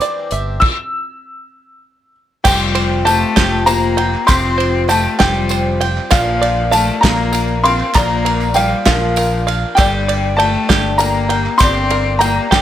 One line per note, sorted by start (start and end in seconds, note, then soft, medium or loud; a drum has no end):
0.00 0.32 E3 soft
0.00 0.64 C4 medium
0.00 0.33 C4 medium
0.00 0.32 D4 medium
0.00 0.63 C5 medium
0.00 0.63 D5 medium
0.00 0.31 E5 medium
0.00 0.64 D6 medium
0.00 closed hi-hat medium
0.04 0.31 G4 medium
0.31 0.58 G1 medium
0.31 0.64 D4 soft
0.31 0.63 G4 soft
0.31 0.63 E5 medium
0.31 closed hi-hat medium
0.35 0.64 C4 soft
0.60 2.10 E6 loud
0.60 kick medium
0.60 crash medium
2.44 3.23 F1 medium
2.44 3.07 F2 medium
2.44 3.07 C3 medium
2.44 3.06 F3 medium
2.44 3.02 G3 medium
2.44 3.07 C4 medium
2.44 3.08 F4 medium
2.44 3.35 G4 medium
2.44 3.08 G5 loud
2.44 kick loud
2.44 clap medium
2.44 crash loud
2.44 tambourine medium
2.48 3.08 G4 medium
2.75 3.65 C5 medium
2.75 ride medium
3.05 3.37 F3 medium
3.05 3.63 A3 loud
3.05 3.37 C4 medium
3.05 3.36 F4 medium
3.05 3.96 G5 medium
3.05 3.69 A5 loud
3.05 clap soft
3.05 ride medium
3.05 tambourine medium
3.10 3.35 G4 medium
3.36 4.15 F1 medium
3.36 3.99 F2 medium
3.36 3.99 C3 medium
3.36 4.00 F3 medium
3.36 3.99 C4 medium
3.36 3.98 F4 medium
3.36 4.26 G4 medium
3.36 3.96 G4 medium
3.36 kick medium
3.36 snare loud
3.36 clap loud
3.36 ride medium
3.66 4.25 A#3 medium
3.66 4.57 C5 medium
3.66 4.30 A#5 loud
3.66 ride medium
3.66 tambourine medium
3.83 tambourine soft
3.97 4.27 F3 soft
3.97 4.27 C4 soft
3.97 4.27 F4 soft
3.97 4.28 G4 medium
3.97 4.88 G5 medium
3.97 ride medium
4.14 clap soft
4.27 5.07 F1 medium
4.27 4.89 F2 medium
4.27 4.89 C3 medium
4.27 4.87 F3 medium
4.27 4.85 C4 medium
4.27 4.88 C4 medium
4.27 4.90 F4 medium
4.27 5.18 G4 medium
4.27 4.90 G4 medium
4.27 4.85 C6 loud
4.27 kick loud
4.27 clap medium
4.27 ride medium
4.27 tambourine loud
4.58 5.49 C5 medium
4.58 ride medium
4.88 5.20 F3 medium
4.88 5.18 A3 medium
4.88 5.19 C4 medium
4.88 5.19 F4 medium
4.88 5.79 G5 medium
4.88 5.18 A5 medium
4.88 clap soft
4.88 ride medium
4.88 tambourine medium
4.92 5.18 G4 medium
5.19 5.98 F1 medium
5.19 5.83 F2 medium
5.19 5.82 C3 medium
5.19 5.84 F3 medium
5.19 5.85 G3 medium
5.19 5.82 C4 medium
5.19 5.82 F4 medium
5.19 5.80 G4 medium
5.19 6.12 G4 medium
5.19 5.84 G5 loud
5.19 kick medium
5.19 snare loud
5.19 clap medium
5.19 ride medium
5.49 6.12 C5 medium
5.49 ride medium
5.49 tambourine medium
5.81 6.11 F3 soft
5.81 6.13 C4 medium
5.81 6.13 F4 soft
5.81 6.12 G4 medium
5.81 6.12 G5 medium
5.81 ride medium
5.98 clap soft
6.11 6.90 A#1 medium
6.11 6.73 A#2 medium
6.11 6.69 F3 medium
6.11 6.71 F3 medium
6.11 7.05 A#3 medium
6.11 6.74 D4 medium
6.11 7.01 F4 medium
6.11 7.03 A#4 loud
6.11 6.69 F5 loud
6.11 kick loud
6.11 clap medium
6.11 ride medium
6.11 tambourine medium
6.41 7.64 D5 medium
6.41 ride medium
6.71 7.03 F3 medium
6.71 7.01 A3 medium
6.71 7.03 D4 medium
6.71 7.63 F5 medium
6.71 7.04 A5 loud
6.71 clap soft
6.71 ride medium
6.71 tambourine medium
7.01 7.82 A#1 medium
7.01 7.60 A#3 medium
7.01 7.65 D4 medium
7.01 7.94 F4 medium
7.01 7.63 A#4 medium
7.01 7.65 A#5 medium
7.01 kick medium
7.01 snare loud
7.01 clap loud
7.01 ride medium
7.05 7.66 A#2 medium
7.05 7.65 F3 medium
7.05 7.66 A#3 medium
7.32 8.24 A#4 medium
7.32 ride medium
7.32 tambourine medium
7.64 7.95 A#3 soft
7.64 7.93 C4 medium
7.64 7.96 D4 soft
7.64 7.95 A#4 medium
7.64 8.54 F5 medium
7.64 7.92 C6 loud
7.64 ride medium
7.80 clap soft
7.94 8.73 A#1 medium
7.94 8.56 A#2 medium
7.94 8.54 F3 medium
7.94 8.52 A#3 medium
7.94 8.56 A#3 medium
7.94 8.58 D4 medium
7.94 8.85 F4 medium
7.94 8.59 A#4 medium
7.94 8.58 A#5 loud
7.94 kick loud
7.94 clap medium
7.94 ride medium
7.94 tambourine medium
8.25 9.16 A#4 medium
8.25 ride medium
8.41 clap soft
8.41 tambourine soft
8.54 8.86 F3 medium
8.54 8.83 G3 medium
8.54 8.86 A#3 medium
8.54 9.46 F5 medium
8.54 8.84 G5 medium
8.54 ride medium
8.54 tambourine medium
8.58 8.85 D4 medium
8.58 8.85 A#4 medium
8.86 9.64 A#1 medium
8.86 9.48 A#2 medium
8.86 9.51 F3 medium
8.86 9.48 F3 medium
8.86 9.51 A#3 medium
8.86 9.50 D4 medium
8.86 9.78 F4 medium
8.86 9.47 A#4 medium
8.86 9.51 F5 medium
8.86 kick medium
8.86 snare loud
8.86 clap loud
8.86 ride medium
8.86 tambourine soft
9.16 9.78 A#4 medium
9.16 ride medium
9.16 tambourine medium
9.31 tambourine soft
9.47 9.79 D4 soft
9.47 9.78 A#4 soft
9.47 9.78 F5 medium
9.47 ride medium
9.47 tambourine soft
9.51 9.79 A#3 soft
9.75 10.56 G1 medium
9.75 10.39 G2 medium
9.75 10.39 D3 medium
9.75 10.35 G3 medium
9.75 10.37 G3 medium
9.75 10.68 G4 medium
9.75 10.33 G5 medium
9.75 kick loud
9.75 clap loud
9.75 ride medium
9.75 tambourine medium
9.80 10.40 A#3 medium
9.80 10.40 D4 medium
9.80 10.40 G4 medium
10.08 11.30 D5 medium
10.08 ride medium
10.37 10.69 G3 medium
10.37 10.95 A3 medium
10.37 10.67 D4 medium
10.37 11.28 G5 medium
10.37 11.01 A5 loud
10.37 clap soft
10.37 ride medium
10.42 10.67 G4 medium
10.69 11.47 G1 medium
10.69 11.31 G2 medium
10.69 11.31 D3 medium
10.69 11.31 G3 medium
10.69 11.31 D4 medium
10.69 11.29 G4 medium
10.69 11.59 G4 medium
10.69 kick medium
10.69 snare loud
10.69 clap loud
10.69 ride medium
10.98 11.56 A#3 medium
10.98 11.90 A#4 medium
10.98 11.62 A#5 medium
10.98 ride medium
10.98 tambourine loud
11.14 tambourine soft
11.29 11.61 A#3 soft
11.29 11.61 D4 medium
11.29 11.61 G4 soft
11.29 12.19 G5 medium
11.29 ride medium
11.34 11.61 G3 soft
11.46 clap soft
11.58 12.38 G1 medium
11.58 12.22 G2 medium
11.58 12.22 D3 medium
11.58 12.17 C4 medium
11.58 12.50 G4 medium
11.58 12.16 C6 loud
11.58 kick loud
11.58 clap loud
11.58 ride medium
11.58 tambourine loud
11.62 12.19 G3 medium
11.62 12.21 A#3 medium
11.62 12.23 D4 medium
11.62 12.23 G4 medium
11.90 12.62 A#4 medium
11.90 ride medium
12.19 12.52 G3 medium
12.19 12.49 A#3 medium
12.19 12.52 A#3 medium
12.19 12.62 G5 medium
12.19 12.49 A#5 loud
12.19 clap soft
12.19 ride medium
12.19 tambourine loud
12.23 12.51 D4 medium
12.23 12.51 G4 medium
12.50 12.62 G1 medium
12.50 12.62 G2 medium
12.50 12.62 D3 medium
12.50 12.62 G3 medium
12.50 12.62 A#3 medium
12.50 12.62 D4 medium
12.50 12.62 G4 loud
12.50 12.62 G4 medium
12.50 12.62 G5 loud
12.50 kick medium
12.50 snare loud
12.50 clap medium
12.50 ride medium